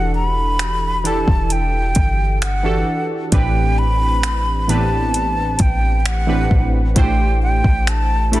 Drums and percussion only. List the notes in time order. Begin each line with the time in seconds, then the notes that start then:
0.59 finger snap, closed hi-hat
1.05 closed hi-hat
1.28 kick
1.50 closed hi-hat
1.95 kick, closed hi-hat
2.42 finger snap, closed hi-hat
3.32 kick, closed hi-hat
4.23 finger snap, closed hi-hat
4.69 closed hi-hat
5.14 closed hi-hat
5.59 kick, closed hi-hat
6.05 finger snap, closed hi-hat
6.51 kick
6.96 kick, closed hi-hat
7.64 kick
7.87 finger snap, closed hi-hat
8.33 closed hi-hat